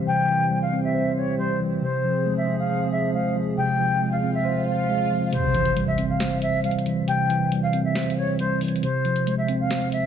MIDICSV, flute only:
0, 0, Header, 1, 2, 480
1, 0, Start_track
1, 0, Tempo, 437956
1, 78, Time_signature, 4, 2, 24, 8
1, 11029, End_track
2, 0, Start_track
2, 0, Title_t, "Flute"
2, 0, Program_c, 0, 73
2, 77, Note_on_c, 0, 79, 102
2, 641, Note_off_c, 0, 79, 0
2, 677, Note_on_c, 0, 77, 77
2, 902, Note_off_c, 0, 77, 0
2, 918, Note_on_c, 0, 76, 67
2, 1256, Note_off_c, 0, 76, 0
2, 1277, Note_on_c, 0, 73, 87
2, 1502, Note_off_c, 0, 73, 0
2, 1517, Note_on_c, 0, 72, 90
2, 1741, Note_off_c, 0, 72, 0
2, 1997, Note_on_c, 0, 72, 90
2, 2561, Note_off_c, 0, 72, 0
2, 2597, Note_on_c, 0, 76, 73
2, 2821, Note_off_c, 0, 76, 0
2, 2837, Note_on_c, 0, 77, 79
2, 3175, Note_off_c, 0, 77, 0
2, 3196, Note_on_c, 0, 76, 75
2, 3421, Note_off_c, 0, 76, 0
2, 3437, Note_on_c, 0, 77, 74
2, 3662, Note_off_c, 0, 77, 0
2, 3916, Note_on_c, 0, 79, 105
2, 4481, Note_off_c, 0, 79, 0
2, 4516, Note_on_c, 0, 77, 76
2, 4741, Note_off_c, 0, 77, 0
2, 4756, Note_on_c, 0, 76, 82
2, 5095, Note_off_c, 0, 76, 0
2, 5116, Note_on_c, 0, 77, 77
2, 5793, Note_off_c, 0, 77, 0
2, 5836, Note_on_c, 0, 72, 114
2, 6401, Note_off_c, 0, 72, 0
2, 6436, Note_on_c, 0, 76, 81
2, 6661, Note_off_c, 0, 76, 0
2, 6677, Note_on_c, 0, 77, 75
2, 7015, Note_off_c, 0, 77, 0
2, 7036, Note_on_c, 0, 76, 84
2, 7261, Note_off_c, 0, 76, 0
2, 7276, Note_on_c, 0, 77, 84
2, 7501, Note_off_c, 0, 77, 0
2, 7757, Note_on_c, 0, 79, 110
2, 8321, Note_off_c, 0, 79, 0
2, 8357, Note_on_c, 0, 77, 80
2, 8582, Note_off_c, 0, 77, 0
2, 8597, Note_on_c, 0, 76, 69
2, 8935, Note_off_c, 0, 76, 0
2, 8957, Note_on_c, 0, 73, 92
2, 9182, Note_off_c, 0, 73, 0
2, 9198, Note_on_c, 0, 72, 92
2, 9422, Note_off_c, 0, 72, 0
2, 9678, Note_on_c, 0, 72, 92
2, 10241, Note_off_c, 0, 72, 0
2, 10277, Note_on_c, 0, 76, 75
2, 10502, Note_off_c, 0, 76, 0
2, 10517, Note_on_c, 0, 77, 82
2, 10856, Note_off_c, 0, 77, 0
2, 10877, Note_on_c, 0, 76, 76
2, 11029, Note_off_c, 0, 76, 0
2, 11029, End_track
0, 0, End_of_file